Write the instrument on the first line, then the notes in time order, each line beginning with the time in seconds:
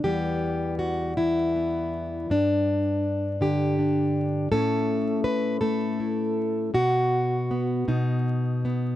steel-string acoustic guitar
0.04 E2 E3 G3 B3 G4
0.79 F#4
1.17 E3 E4
1.56 B3
2.30 G2 D4
3.41 D3 G4
3.79 D4
4.52 A2 A3 C#4 E4 A4
5.24 B4
5.61 A3 A4
6.00 E4
6.74 B2 F#4
7.51 B3
7.88 B2 D#4
8.65 B3